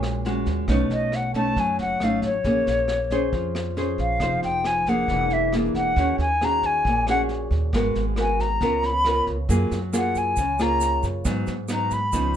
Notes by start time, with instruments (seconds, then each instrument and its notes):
Already playing: upright bass A#1, nylon-string guitar A#2 G#3 C#4 F#4
0.03 cross-stick, snare
0.25 nylon-string guitar G#3 C#4 F#4, snare
0.46 upright bass D#2, kick, snare
0.68 upright bass B1, nylon-string guitar B2 A3 C#4 D#4, kick, cross-stick, snare
0.90 upright bass B1, flute D#5, snare
1.12 flute F#5, cross-stick, snare
1.34 nylon-string guitar A3 C#4 D#4, flute A5, kick, snare
1.56 upright bass F#2, nylon-string guitar F#3, flute G#5, kick, snare
1.79 upright bass F#1, flute F#5, snare
2.00 upright bass G#1, nylon-string guitar A3 C#4 D#4, flute F5, cross-stick, snare
2.22 upright bass A1, flute C#5, kick, snare
2.44 upright bass A#1, nylon-string guitar A#3 C#4 G#4, kick, snare
2.67 upright bass A#1, snare
2.88 cross-stick, snare
3.10 nylon-string guitar C#4 G#4 C5, kick, snare
3.33 upright bass F2, nylon-string guitar F3, kick, snare
3.55 cross-stick, snare
3.77 nylon-string guitar C#4 G#4 C5, snare
3.98 upright bass A#1, flute F5, kick, snare
4.20 upright bass F1, nylon-string guitar F3 D#4 G#4 C5, kick, cross-stick, snare
4.43 upright bass F1, flute G5, snare
4.64 flute G#5, cross-stick, snare
4.86 nylon-string guitar A#3 D4 G#4, flute F#5, kick, snare
5.08 upright bass E1, nylon-string guitar E3, kick, snare
5.30 flute E5, snare
5.53 nylon-string guitar A#3 D4 G#4, cross-stick, snare
5.74 upright bass E1, flute F#5, kick, snare
5.96 upright bass D#2, nylon-string guitar D#3 C#4 F#4 G#4, kick, snare
6.18 upright bass D#2, flute G#5, snare
6.41 nylon-string guitar C#4 F#4 G#4, flute A#5, cross-stick, snare
6.63 flute G#5, kick, snare
6.85 upright bass A#1, nylon-string guitar A#2, kick, snare
7.07 nylon-string guitar C#4 F#4 G#4, flute F#5, cross-stick, snare
7.29 snare
7.51 upright bass D#2, kick, snare
7.73 upright bass G#1, nylon-string guitar G#3 B3 F#4 A#4, kick, cross-stick, snare
7.95 upright bass G#1, snare
8.16 nylon-string guitar B3 F#4 A#4, cross-stick, snare
8.21 flute G#5
8.39 flute A#5, kick, snare
8.61 upright bass C#2, nylon-string guitar C#3 B3 F4 A#4, kick, snare
8.83 flute B5, snare
9.05 nylon-string guitar B3 F4 A#4, cross-stick, snare
9.27 upright bass C#2, kick, snare
9.49 upright bass F#2, nylon-string guitar F#3 A#3 F4 G#4, kick, snare, shaker
9.71 upright bass F#2, snare, shaker
9.93 nylon-string guitar A#3 F4 G#4, flute F#5, cross-stick, snare, shaker
10.15 flute G#5, kick, snare, shaker
10.36 upright bass C#2, nylon-string guitar C#3, kick, snare, shaker
10.59 nylon-string guitar A#3 F4 G#4, flute A#5, cross-stick, snare, shaker
10.80 snare, shaker
11.03 upright bass F#2, kick, snare, shaker
11.25 nylon-string guitar G#2 F#3 B3 D#4, upright bass G#2, kick, cross-stick, snare, shaker
11.47 upright bass G#2, snare, shaker
11.68 nylon-string guitar F#3 B3 D#4, cross-stick, snare, shaker
11.74 flute A#5
11.91 flute B5, kick, snare, shaker
12.12 upright bass C#2, nylon-string guitar C#3 F3 B3 D#4, kick, snare, shaker